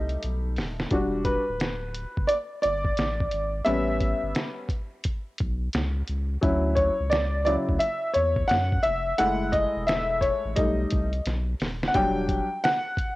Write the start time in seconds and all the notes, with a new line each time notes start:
Already playing: C2 G3 A3 D#4 D#5
0.09 closed hi-hat
0.23 B1, closed hi-hat
0.56 D#1, snare, open hi-hat
0.80 snare
0.91 E1 G3 D4 F#4, kick, closed hi-hat
1.25 B4, kick, closed hi-hat
1.49 D1
1.60 snare, closed hi-hat
1.95 closed hi-hat
2.17 F#1, kick
2.27 D5, closed hi-hat
2.62 G1 D5, closed hi-hat
2.85 kick
2.97 A1, snare, closed hi-hat
3.20 kick
3.31 G#1, closed hi-hat
3.65 A1 G3 B3 C#4 E5, closed hi-hat
4.00 kick, closed hi-hat
4.23 G1
4.35 snare, closed hi-hat
4.69 kick, closed hi-hat
5.04 kick, closed hi-hat
5.38 B1, kick, closed hi-hat
5.73 C#2, snare, closed hi-hat
6.08 C#2, closed hi-hat
6.41 D2 F#3 C#4 E4, kick, closed hi-hat
6.75 C#5, kick, closed hi-hat
7.00 C#2
7.10 D5, snare, closed hi-hat
7.45 C#3 F#3 E4 D5, closed hi-hat
7.69 D2, kick
7.79 E5, closed hi-hat
8.14 E2 C#5, closed hi-hat
8.36 kick
8.48 F#2 F#5, snare, closed hi-hat
8.72 kick
8.83 F1 E5, closed hi-hat
9.18 F#1 G#3 A3 E4 F#5, closed hi-hat
9.52 D#5, kick, closed hi-hat
9.76 E1
9.87 E5, snare, closed hi-hat
10.21 C#5, kick, closed hi-hat
10.45 A1
10.56 B1 G3 A3 D#4 D#5, kick, closed hi-hat
10.90 C2, kick, closed hi-hat
11.13 closed hi-hat
11.26 B1, snare, closed hi-hat
11.60 D#1, snare, open hi-hat
11.83 snare
11.88 F#5
11.94 E1 F#3 G3 D4 G5, kick, closed hi-hat
12.29 kick, closed hi-hat
12.64 F#5, snare, closed hi-hat
12.97 kick, closed hi-hat